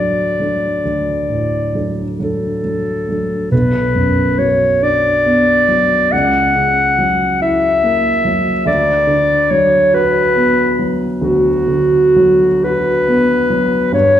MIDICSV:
0, 0, Header, 1, 3, 480
1, 0, Start_track
1, 0, Key_signature, 2, "major"
1, 0, Tempo, 895522
1, 1416, Tempo, 870827
1, 1898, Time_signature, 12, 3, 24, 8
1, 1898, Key_signature, 2, "minor"
1, 3816, Tempo, 845070
1, 6216, Tempo, 934579
1, 7176, Tempo, 842697
1, 7807, End_track
2, 0, Start_track
2, 0, Title_t, "Clarinet"
2, 0, Program_c, 0, 71
2, 0, Note_on_c, 0, 74, 52
2, 1090, Note_off_c, 0, 74, 0
2, 1181, Note_on_c, 0, 69, 52
2, 1877, Note_off_c, 0, 69, 0
2, 1900, Note_on_c, 0, 71, 65
2, 2379, Note_on_c, 0, 73, 66
2, 2387, Note_off_c, 0, 71, 0
2, 2624, Note_on_c, 0, 74, 72
2, 2633, Note_off_c, 0, 73, 0
2, 3333, Note_on_c, 0, 78, 73
2, 3341, Note_off_c, 0, 74, 0
2, 4053, Note_off_c, 0, 78, 0
2, 4056, Note_on_c, 0, 76, 81
2, 4751, Note_off_c, 0, 76, 0
2, 4766, Note_on_c, 0, 74, 70
2, 5243, Note_on_c, 0, 73, 74
2, 5251, Note_off_c, 0, 74, 0
2, 5493, Note_on_c, 0, 71, 84
2, 5501, Note_off_c, 0, 73, 0
2, 6053, Note_off_c, 0, 71, 0
2, 6217, Note_on_c, 0, 66, 76
2, 6946, Note_on_c, 0, 71, 84
2, 6953, Note_off_c, 0, 66, 0
2, 7654, Note_off_c, 0, 71, 0
2, 7658, Note_on_c, 0, 73, 82
2, 7807, Note_off_c, 0, 73, 0
2, 7807, End_track
3, 0, Start_track
3, 0, Title_t, "Grand piano"
3, 0, Program_c, 1, 0
3, 0, Control_c, 1, 64, 127
3, 0, Note_on_c, 1, 38, 34
3, 0, Note_on_c, 1, 45, 27
3, 0, Note_on_c, 1, 54, 26
3, 0, Note_on_c, 1, 57, 26
3, 0, Note_on_c, 1, 62, 28
3, 206, Note_off_c, 1, 54, 0
3, 214, Note_on_c, 1, 54, 25
3, 216, Note_off_c, 1, 57, 0
3, 216, Note_on_c, 1, 57, 24
3, 218, Note_off_c, 1, 62, 0
3, 218, Note_on_c, 1, 62, 26
3, 435, Note_off_c, 1, 54, 0
3, 436, Note_off_c, 1, 57, 0
3, 437, Note_off_c, 1, 38, 0
3, 437, Note_off_c, 1, 62, 0
3, 455, Note_on_c, 1, 38, 30
3, 695, Note_off_c, 1, 45, 0
3, 695, Note_on_c, 1, 45, 26
3, 937, Note_on_c, 1, 54, 24
3, 939, Note_on_c, 1, 57, 27
3, 943, Note_on_c, 1, 62, 25
3, 1081, Note_off_c, 1, 45, 0
3, 1157, Note_off_c, 1, 54, 0
3, 1158, Note_off_c, 1, 57, 0
3, 1160, Note_off_c, 1, 62, 0
3, 1178, Note_on_c, 1, 54, 27
3, 1181, Note_on_c, 1, 57, 26
3, 1184, Note_on_c, 1, 62, 28
3, 1395, Note_off_c, 1, 54, 0
3, 1397, Note_off_c, 1, 57, 0
3, 1398, Note_off_c, 1, 62, 0
3, 1418, Note_on_c, 1, 54, 24
3, 1652, Note_off_c, 1, 54, 0
3, 1661, Note_on_c, 1, 54, 24
3, 1664, Note_on_c, 1, 57, 24
3, 1667, Note_on_c, 1, 62, 26
3, 1874, Note_off_c, 1, 38, 0
3, 1877, Note_off_c, 1, 54, 0
3, 1879, Note_off_c, 1, 57, 0
3, 1880, Note_off_c, 1, 62, 0
3, 1898, Note_on_c, 1, 35, 40
3, 1908, Control_c, 1, 64, 0
3, 1992, Control_c, 1, 64, 127
3, 2138, Note_on_c, 1, 42, 33
3, 2378, Note_on_c, 1, 54, 36
3, 2524, Note_off_c, 1, 42, 0
3, 2615, Note_on_c, 1, 62, 37
3, 2762, Note_off_c, 1, 54, 0
3, 2859, Note_on_c, 1, 59, 38
3, 2998, Note_off_c, 1, 62, 0
3, 3094, Note_on_c, 1, 54, 33
3, 3240, Note_off_c, 1, 59, 0
3, 3312, Note_off_c, 1, 35, 0
3, 3334, Note_off_c, 1, 54, 0
3, 3335, Note_on_c, 1, 37, 42
3, 3345, Control_c, 1, 64, 0
3, 3425, Control_c, 1, 64, 127
3, 3573, Note_on_c, 1, 49, 33
3, 3810, Note_on_c, 1, 54, 38
3, 3961, Note_off_c, 1, 49, 0
3, 4053, Note_on_c, 1, 64, 40
3, 4195, Note_off_c, 1, 54, 0
3, 4292, Note_on_c, 1, 58, 39
3, 4433, Note_off_c, 1, 64, 0
3, 4527, Note_on_c, 1, 54, 38
3, 4671, Note_off_c, 1, 58, 0
3, 4744, Note_off_c, 1, 37, 0
3, 4760, Note_on_c, 1, 38, 49
3, 4765, Note_off_c, 1, 54, 0
3, 4778, Control_c, 1, 64, 0
3, 4890, Control_c, 1, 64, 127
3, 4994, Note_on_c, 1, 50, 36
3, 5243, Note_on_c, 1, 54, 39
3, 5386, Note_off_c, 1, 50, 0
3, 5487, Note_on_c, 1, 66, 44
3, 5634, Note_off_c, 1, 54, 0
3, 5726, Note_on_c, 1, 59, 40
3, 5879, Note_off_c, 1, 66, 0
3, 5972, Note_on_c, 1, 54, 38
3, 6116, Note_off_c, 1, 59, 0
3, 6191, Note_off_c, 1, 38, 0
3, 6212, Note_on_c, 1, 38, 45
3, 6352, Note_off_c, 1, 54, 0
3, 6448, Note_on_c, 1, 50, 42
3, 6700, Note_on_c, 1, 54, 45
3, 6852, Note_off_c, 1, 50, 0
3, 6945, Note_on_c, 1, 66, 46
3, 7085, Note_off_c, 1, 54, 0
3, 7170, Note_on_c, 1, 59, 46
3, 7320, Note_off_c, 1, 66, 0
3, 7410, Note_on_c, 1, 54, 46
3, 7559, Note_off_c, 1, 59, 0
3, 7633, Note_off_c, 1, 38, 0
3, 7649, Note_on_c, 1, 43, 54
3, 7653, Note_off_c, 1, 54, 0
3, 7667, Control_c, 1, 64, 0
3, 7780, Control_c, 1, 64, 127
3, 7807, Note_off_c, 1, 43, 0
3, 7807, End_track
0, 0, End_of_file